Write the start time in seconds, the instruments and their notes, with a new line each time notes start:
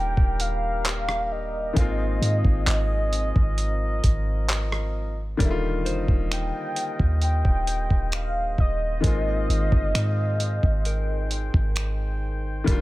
Already playing: 808-style bass D#1, grand piano D3 D#3 G3 A#3 F4, brass ensemble G3 A#3 G4 A#4, soft synth lead G5
0.17 808-style bass D#1, kick
0.40 soft synth lead F5, closed hi-hat
0.85 clap, closed hi-hat
1.09 cross-stick
1.32 soft synth lead D#5
1.73 808-style bass G#1, grand piano D#3 G#3 A#3, brass ensemble F3 C4 G#4, synth bell F5, kick, closed hi-hat
1.77 grand piano C4 F4, brass ensemble D#5
2.21 808-style bass G#2, closed hi-hat
2.45 808-style bass G#1, kick
2.67 808-style bass G#1, clap, closed hi-hat
3.13 closed hi-hat
3.36 808-style bass G#1, kick
3.58 brass ensemble A#4, closed hi-hat
4.04 808-style bass G#1, kick, closed hi-hat
4.49 clap, closed hi-hat
4.72 cross-stick
5.37 808-style bass D#1, grand piano D#3 G3 A#3, brass ensemble A#3 G4 A#4 D#5, kick, closed hi-hat
5.42 grand piano D3 E4
5.51 grand piano F4
5.85 808-style bass F1, synth bell C5, closed hi-hat
6.08 808-style bass D#1, kick
6.32 soft synth lead G5, finger snap, closed hi-hat
6.76 closed hi-hat
7.00 808-style bass D#2, kick
7.22 brass ensemble C5, soft synth lead G5, closed hi-hat
7.45 808-style bass D#1, kick
7.67 closed hi-hat
7.90 808-style bass D#1, kick
8.12 soft synth lead F5, finger snap, closed hi-hat
8.58 808-style bass D#1, soft synth lead D#5, kick
9.01 808-style bass G#1, grand piano D#3 G#3 A#3, brass ensemble D#3 G#4 F5, kick, closed hi-hat
9.06 grand piano C4 F4
9.49 808-style bass G#1, closed hi-hat
9.72 808-style bass G1, kick
9.95 808-style bass G#2, finger snap, closed hi-hat
10.40 closed hi-hat
10.63 808-style bass G#1, kick
10.85 synth bell A#4, brass ensemble G5, closed hi-hat
11.31 closed hi-hat
11.54 808-style bass G#1, kick
11.76 finger snap, closed hi-hat
12.64 808-style bass D#1, grand piano D#3 G3 A#3, brass ensemble A#4 D5, kick, closed hi-hat
12.69 grand piano D4 F4